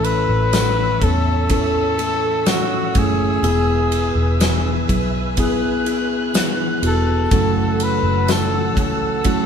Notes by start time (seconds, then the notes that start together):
Already playing: A1 A2 E3 A3 C#4 E4 A4 C#5 E5 E6
0.04 B4, ride
0.29 A1
0.53 A3 C#4 E4 A4, snare, ride, tambourine
1.01 E2 A3 C#4 E4 A4, kick, ride
1.49 C#4 E4 A4, kick, ride
1.98 A3 C#4 E4 A4, ride
2.46 A3 C#4 E4 F#4, snare, ride, tambourine
2.95 F#1 A3 C#4 E4 G#4, kick, ride
3.42 E1 B2 E3 B3 E4 G#4 B4 E5 G#5, ride
3.92 ride
4.15 E1
4.40 E3 B3 E4 G#4, snare, ride, tambourine
4.88 B1 B3 E4 G#4, kick, ride
5.37 B3 E4 G#4 F#6, kick, ride
5.85 B3 E4 G#4, ride
6.34 E3 B3 E4, snare, ride, tambourine
6.82 E1 B3 E4 F#4, ride
6.87 A4
7.30 F#1 F#2 C#3 E3 F#3 A3 C#4 E4 F#4 A4 F#5 A5 E6, kick, ride
7.80 B4, ride
8.03 F#1
8.27 E3 A3 C#4 F#4, snare, ride, tambourine
8.31 A4
8.75 C#2 E3 A3 C#4 F#4, kick, ride
8.79 A4
9.24 F#3 A3 C#4 E4 F#4, kick, ride